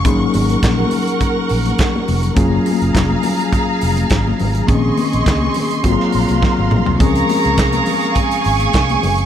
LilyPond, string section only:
\new Staff \with { instrumentName = "String section" } { \time 4/4 \key des \major \tempo 4 = 104 <bes' ges'' des'''>1 | <aes' f'' bes''>1 | <aes' ees'' c''' des'''>2 <ges f'' bes''>2 | <aes' f'' des'''>1 | }